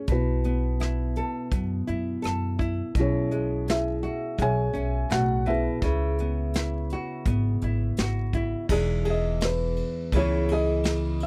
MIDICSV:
0, 0, Header, 1, 5, 480
1, 0, Start_track
1, 0, Key_signature, 4, "major"
1, 0, Tempo, 716846
1, 60, Time_signature, 4, 2, 24, 8
1, 7544, End_track
2, 0, Start_track
2, 0, Title_t, "Felt piano"
2, 0, Program_c, 0, 0
2, 0, Note_on_c, 0, 73, 63
2, 76, Note_off_c, 0, 73, 0
2, 78, Note_on_c, 0, 66, 50
2, 80, Note_on_c, 0, 59, 45
2, 80, Note_on_c, 0, 71, 63
2, 81, Note_on_c, 0, 64, 48
2, 1003, Note_off_c, 0, 59, 0
2, 1003, Note_off_c, 0, 66, 0
2, 1004, Note_off_c, 0, 64, 0
2, 1004, Note_off_c, 0, 71, 0
2, 2005, Note_on_c, 0, 64, 58
2, 2009, Note_on_c, 0, 68, 58
2, 2011, Note_on_c, 0, 61, 55
2, 2015, Note_on_c, 0, 73, 78
2, 2446, Note_off_c, 0, 64, 0
2, 2448, Note_off_c, 0, 68, 0
2, 2449, Note_off_c, 0, 61, 0
2, 2480, Note_on_c, 0, 64, 54
2, 2480, Note_on_c, 0, 76, 78
2, 2481, Note_on_c, 0, 68, 60
2, 2492, Note_off_c, 0, 73, 0
2, 2924, Note_off_c, 0, 64, 0
2, 2924, Note_off_c, 0, 68, 0
2, 2924, Note_off_c, 0, 76, 0
2, 2960, Note_on_c, 0, 80, 98
2, 2961, Note_on_c, 0, 68, 68
2, 2962, Note_on_c, 0, 73, 68
2, 2963, Note_on_c, 0, 76, 63
2, 3404, Note_off_c, 0, 80, 0
2, 3405, Note_off_c, 0, 68, 0
2, 3405, Note_off_c, 0, 73, 0
2, 3405, Note_off_c, 0, 76, 0
2, 3426, Note_on_c, 0, 78, 87
2, 3438, Note_on_c, 0, 66, 65
2, 3653, Note_off_c, 0, 66, 0
2, 3665, Note_on_c, 0, 76, 76
2, 3671, Note_off_c, 0, 78, 0
2, 3675, Note_on_c, 0, 64, 51
2, 3681, Note_on_c, 0, 71, 53
2, 3682, Note_on_c, 0, 68, 52
2, 5557, Note_off_c, 0, 76, 0
2, 5561, Note_off_c, 0, 64, 0
2, 5565, Note_off_c, 0, 68, 0
2, 5565, Note_off_c, 0, 71, 0
2, 6094, Note_on_c, 0, 75, 66
2, 6324, Note_off_c, 0, 75, 0
2, 6328, Note_on_c, 0, 71, 70
2, 6806, Note_on_c, 0, 64, 63
2, 6807, Note_on_c, 0, 73, 85
2, 6808, Note_off_c, 0, 71, 0
2, 7018, Note_off_c, 0, 73, 0
2, 7051, Note_on_c, 0, 75, 83
2, 7521, Note_on_c, 0, 76, 78
2, 7528, Note_off_c, 0, 75, 0
2, 7544, Note_off_c, 0, 64, 0
2, 7544, Note_off_c, 0, 76, 0
2, 7544, End_track
3, 0, Start_track
3, 0, Title_t, "Nylon-string guitar"
3, 0, Program_c, 1, 24
3, 52, Note_on_c, 1, 47, 53
3, 300, Note_on_c, 1, 59, 44
3, 538, Note_on_c, 1, 64, 43
3, 782, Note_on_c, 1, 69, 57
3, 1013, Note_off_c, 1, 59, 0
3, 1015, Note_on_c, 1, 59, 43
3, 1252, Note_off_c, 1, 64, 0
3, 1255, Note_on_c, 1, 64, 50
3, 1480, Note_off_c, 1, 69, 0
3, 1488, Note_on_c, 1, 69, 58
3, 1731, Note_off_c, 1, 64, 0
3, 1733, Note_on_c, 1, 64, 58
3, 1946, Note_off_c, 1, 69, 0
3, 1972, Note_off_c, 1, 47, 0
3, 1980, Note_on_c, 1, 47, 58
3, 2216, Note_off_c, 1, 59, 0
3, 2218, Note_on_c, 1, 56, 48
3, 2461, Note_off_c, 1, 64, 0
3, 2463, Note_on_c, 1, 61, 48
3, 2698, Note_on_c, 1, 66, 57
3, 2930, Note_off_c, 1, 56, 0
3, 2933, Note_on_c, 1, 56, 50
3, 3162, Note_off_c, 1, 61, 0
3, 3170, Note_on_c, 1, 61, 52
3, 3414, Note_on_c, 1, 45, 53
3, 3648, Note_off_c, 1, 47, 0
3, 3656, Note_on_c, 1, 47, 61
3, 3657, Note_off_c, 1, 45, 0
3, 3867, Note_off_c, 1, 61, 0
3, 3871, Note_off_c, 1, 66, 0
3, 3899, Note_off_c, 1, 47, 0
3, 3902, Note_on_c, 1, 49, 64
3, 4137, Note_off_c, 1, 56, 0
3, 4153, Note_on_c, 1, 59, 50
3, 4389, Note_on_c, 1, 64, 47
3, 4638, Note_on_c, 1, 66, 59
3, 4861, Note_off_c, 1, 59, 0
3, 4869, Note_on_c, 1, 59, 51
3, 5105, Note_off_c, 1, 64, 0
3, 5114, Note_on_c, 1, 64, 56
3, 5346, Note_off_c, 1, 66, 0
3, 5354, Note_on_c, 1, 66, 61
3, 5580, Note_off_c, 1, 64, 0
3, 5588, Note_on_c, 1, 64, 62
3, 5793, Note_off_c, 1, 49, 0
3, 5796, Note_off_c, 1, 64, 0
3, 5797, Note_off_c, 1, 59, 0
3, 5799, Note_off_c, 1, 66, 0
3, 5820, Note_on_c, 1, 40, 62
3, 5825, Note_on_c, 1, 52, 47
3, 5828, Note_on_c, 1, 56, 49
3, 5834, Note_on_c, 1, 63, 46
3, 5836, Note_on_c, 1, 68, 61
3, 6058, Note_off_c, 1, 68, 0
3, 6061, Note_on_c, 1, 68, 52
3, 6758, Note_off_c, 1, 63, 0
3, 6780, Note_off_c, 1, 40, 0
3, 6785, Note_on_c, 1, 49, 60
3, 6788, Note_off_c, 1, 52, 0
3, 6790, Note_on_c, 1, 52, 54
3, 6794, Note_off_c, 1, 56, 0
3, 6797, Note_on_c, 1, 59, 49
3, 6803, Note_on_c, 1, 64, 54
3, 6804, Note_off_c, 1, 68, 0
3, 6806, Note_on_c, 1, 68, 58
3, 7033, Note_off_c, 1, 68, 0
3, 7043, Note_on_c, 1, 68, 61
3, 7544, Note_off_c, 1, 49, 0
3, 7544, Note_off_c, 1, 52, 0
3, 7544, Note_off_c, 1, 59, 0
3, 7544, Note_off_c, 1, 64, 0
3, 7544, Note_off_c, 1, 68, 0
3, 7544, End_track
4, 0, Start_track
4, 0, Title_t, "Upright bass"
4, 0, Program_c, 2, 32
4, 54, Note_on_c, 2, 35, 77
4, 792, Note_off_c, 2, 35, 0
4, 1016, Note_on_c, 2, 42, 93
4, 1202, Note_off_c, 2, 42, 0
4, 1263, Note_on_c, 2, 42, 66
4, 1446, Note_off_c, 2, 42, 0
4, 1508, Note_on_c, 2, 42, 71
4, 1873, Note_off_c, 2, 42, 0
4, 1974, Note_on_c, 2, 35, 75
4, 2712, Note_off_c, 2, 35, 0
4, 2940, Note_on_c, 2, 35, 98
4, 3124, Note_off_c, 2, 35, 0
4, 3182, Note_on_c, 2, 35, 66
4, 3366, Note_off_c, 2, 35, 0
4, 3424, Note_on_c, 2, 35, 75
4, 3791, Note_off_c, 2, 35, 0
4, 3900, Note_on_c, 2, 37, 87
4, 4636, Note_off_c, 2, 37, 0
4, 4859, Note_on_c, 2, 32, 101
4, 5044, Note_off_c, 2, 32, 0
4, 5104, Note_on_c, 2, 32, 81
4, 5287, Note_off_c, 2, 32, 0
4, 5342, Note_on_c, 2, 32, 71
4, 5709, Note_off_c, 2, 32, 0
4, 5821, Note_on_c, 2, 28, 78
4, 6556, Note_off_c, 2, 28, 0
4, 6779, Note_on_c, 2, 37, 101
4, 7514, Note_off_c, 2, 37, 0
4, 7544, End_track
5, 0, Start_track
5, 0, Title_t, "Drums"
5, 51, Note_on_c, 9, 42, 57
5, 54, Note_on_c, 9, 36, 73
5, 118, Note_off_c, 9, 42, 0
5, 121, Note_off_c, 9, 36, 0
5, 295, Note_on_c, 9, 42, 47
5, 362, Note_off_c, 9, 42, 0
5, 533, Note_on_c, 9, 42, 60
5, 545, Note_on_c, 9, 37, 73
5, 600, Note_off_c, 9, 42, 0
5, 612, Note_off_c, 9, 37, 0
5, 775, Note_on_c, 9, 42, 39
5, 842, Note_off_c, 9, 42, 0
5, 1015, Note_on_c, 9, 36, 62
5, 1016, Note_on_c, 9, 42, 53
5, 1082, Note_off_c, 9, 36, 0
5, 1083, Note_off_c, 9, 42, 0
5, 1256, Note_on_c, 9, 42, 46
5, 1323, Note_off_c, 9, 42, 0
5, 1498, Note_on_c, 9, 42, 57
5, 1510, Note_on_c, 9, 37, 72
5, 1565, Note_off_c, 9, 42, 0
5, 1577, Note_off_c, 9, 37, 0
5, 1736, Note_on_c, 9, 36, 53
5, 1743, Note_on_c, 9, 42, 42
5, 1803, Note_off_c, 9, 36, 0
5, 1810, Note_off_c, 9, 42, 0
5, 1976, Note_on_c, 9, 36, 76
5, 1976, Note_on_c, 9, 42, 55
5, 2042, Note_off_c, 9, 36, 0
5, 2043, Note_off_c, 9, 42, 0
5, 2221, Note_on_c, 9, 42, 45
5, 2287, Note_off_c, 9, 42, 0
5, 2463, Note_on_c, 9, 42, 57
5, 2475, Note_on_c, 9, 38, 77
5, 2530, Note_off_c, 9, 42, 0
5, 2542, Note_off_c, 9, 38, 0
5, 2703, Note_on_c, 9, 42, 36
5, 2770, Note_off_c, 9, 42, 0
5, 2937, Note_on_c, 9, 36, 58
5, 2942, Note_on_c, 9, 42, 54
5, 3004, Note_off_c, 9, 36, 0
5, 3009, Note_off_c, 9, 42, 0
5, 3176, Note_on_c, 9, 42, 43
5, 3243, Note_off_c, 9, 42, 0
5, 3416, Note_on_c, 9, 42, 52
5, 3428, Note_on_c, 9, 38, 76
5, 3483, Note_off_c, 9, 42, 0
5, 3495, Note_off_c, 9, 38, 0
5, 3658, Note_on_c, 9, 42, 42
5, 3725, Note_off_c, 9, 42, 0
5, 3896, Note_on_c, 9, 42, 56
5, 3897, Note_on_c, 9, 36, 81
5, 3963, Note_off_c, 9, 42, 0
5, 3964, Note_off_c, 9, 36, 0
5, 4141, Note_on_c, 9, 42, 49
5, 4208, Note_off_c, 9, 42, 0
5, 4378, Note_on_c, 9, 42, 65
5, 4390, Note_on_c, 9, 38, 81
5, 4445, Note_off_c, 9, 42, 0
5, 4457, Note_off_c, 9, 38, 0
5, 4619, Note_on_c, 9, 42, 41
5, 4686, Note_off_c, 9, 42, 0
5, 4858, Note_on_c, 9, 36, 61
5, 4858, Note_on_c, 9, 42, 57
5, 4925, Note_off_c, 9, 36, 0
5, 4925, Note_off_c, 9, 42, 0
5, 5099, Note_on_c, 9, 42, 47
5, 5166, Note_off_c, 9, 42, 0
5, 5335, Note_on_c, 9, 42, 64
5, 5347, Note_on_c, 9, 38, 76
5, 5402, Note_off_c, 9, 42, 0
5, 5414, Note_off_c, 9, 38, 0
5, 5580, Note_on_c, 9, 36, 54
5, 5580, Note_on_c, 9, 42, 40
5, 5647, Note_off_c, 9, 36, 0
5, 5647, Note_off_c, 9, 42, 0
5, 5820, Note_on_c, 9, 36, 77
5, 5821, Note_on_c, 9, 49, 70
5, 5887, Note_off_c, 9, 36, 0
5, 5888, Note_off_c, 9, 49, 0
5, 6060, Note_on_c, 9, 51, 46
5, 6127, Note_off_c, 9, 51, 0
5, 6296, Note_on_c, 9, 51, 58
5, 6308, Note_on_c, 9, 38, 86
5, 6363, Note_off_c, 9, 51, 0
5, 6375, Note_off_c, 9, 38, 0
5, 6539, Note_on_c, 9, 51, 39
5, 6606, Note_off_c, 9, 51, 0
5, 6779, Note_on_c, 9, 36, 61
5, 6780, Note_on_c, 9, 51, 57
5, 6846, Note_off_c, 9, 36, 0
5, 6847, Note_off_c, 9, 51, 0
5, 7021, Note_on_c, 9, 51, 49
5, 7088, Note_off_c, 9, 51, 0
5, 7255, Note_on_c, 9, 51, 56
5, 7268, Note_on_c, 9, 38, 80
5, 7322, Note_off_c, 9, 51, 0
5, 7334, Note_off_c, 9, 38, 0
5, 7500, Note_on_c, 9, 51, 46
5, 7544, Note_off_c, 9, 51, 0
5, 7544, End_track
0, 0, End_of_file